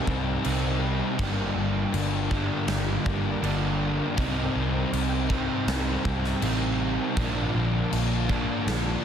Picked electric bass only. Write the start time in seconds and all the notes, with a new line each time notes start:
0.07 C2
0.46 C2
1.19 G1
1.56 G1
1.94 G1
2.68 G1
3.06 G1
3.43 G1
4.19 C2
4.56 C2
4.93 C2
5.67 C2
6.05 C2
6.42 A1
7.18 A#1
7.55 A#1
7.93 A#1
8.67 A#1